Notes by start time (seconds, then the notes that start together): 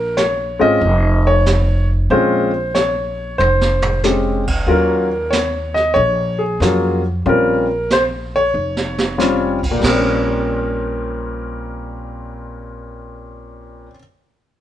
Already playing: A#1 A#4
0.17 C#5, snare, hi-hat pedal
0.59 G#1 G#3 C4 C#4 F4 D#5
0.81 F1, brush sweep
1.27 C#5
1.46 snare, hi-hat pedal
2.10 A#1 G#3 C4 C#4 F4 C5, brush sweep
2.75 C#5, snare, hi-hat pedal
3.38 F1 C5, high tom
3.61 snare
3.82 floor tom
4.03 G#3 C4 C#4 G4, snare, hi-hat pedal
4.47 kick, crash
4.67 D#2 F#3 A#3 C#4 F4 A#4, brush sweep
5.30 C#5, snare, hi-hat pedal
5.74 D#5, snare
5.94 A#1 C#5, brush sweep
6.39 G#4
6.60 F2 F#3 A#3 C#4 F4, snare, hi-hat pedal
7.26 A#1 G3 C4 C#4 F4 A#4, brush sweep
7.90 C5, snare, hi-hat pedal
8.36 C#5
8.54 F1
8.77 snare
8.98 snare
9.18 G3 C4 C#4 F4, snare, hi-hat pedal
9.63 kick, crash
9.71 A#2
9.79 G3
9.83 A#1 A#4, snare, crash
9.88 C4
9.96 C#4